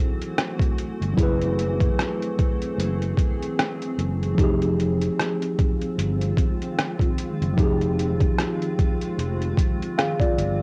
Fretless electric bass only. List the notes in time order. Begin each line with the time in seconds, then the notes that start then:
1.02 G1
1.18 F#1
2.78 F#1
3.98 F#1
4.38 F1
5.98 G1
7.42 F#1
7.58 F1
9.19 F1
10.38 G1